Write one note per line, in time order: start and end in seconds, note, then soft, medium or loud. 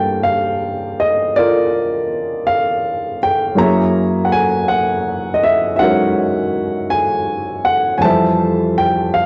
0.00 3.58 G2 soft
0.00 3.58 G3 soft
0.00 3.56 A#3 soft
0.00 1.37 F4 soft
0.00 1.36 A#4 soft
0.00 1.33 D5 medium
0.00 0.22 F5 medium
0.00 0.21 G5 medium
0.00 3.58 A5 medium
0.23 0.95 F5 medium
1.00 1.33 D#5 medium
1.36 3.55 F4 medium
1.36 3.55 A#4 medium
1.36 2.43 D5 medium
2.47 3.18 F5 medium
3.23 3.59 G5 medium
3.55 8.02 F#2 soft
3.55 5.78 F#3 soft
3.55 8.03 A#3 soft
3.55 4.26 A#5 medium
3.59 8.04 E4 soft
3.59 8.04 G#4 medium
3.59 5.78 C#5 medium
3.59 5.42 E5 medium
4.25 4.33 F#5 medium
4.32 4.66 G#5 medium
4.68 5.30 F#5 medium
5.34 5.44 D#5 medium
5.43 5.73 E5 medium
5.76 8.02 F#3 soft
5.76 8.03 G#3 soft
5.76 5.80 E5 medium
5.76 6.94 F#5 medium
5.81 8.03 C#4 soft
5.81 8.03 D#4 soft
5.81 8.04 F#4 soft
5.81 8.00 A#4 medium
5.81 7.99 C#5 medium
6.90 7.68 G#5 medium
7.65 7.98 F#5 medium
7.98 9.26 F2 soft
7.98 9.26 F3 soft
7.98 8.02 G#5 medium
7.98 8.74 A5 medium
8.04 9.26 E3 soft
8.04 9.26 G3 soft
8.04 9.26 C5 medium
8.04 9.26 E5 medium
8.09 9.26 A4 medium
8.78 9.15 G5 medium
9.14 9.26 F5 medium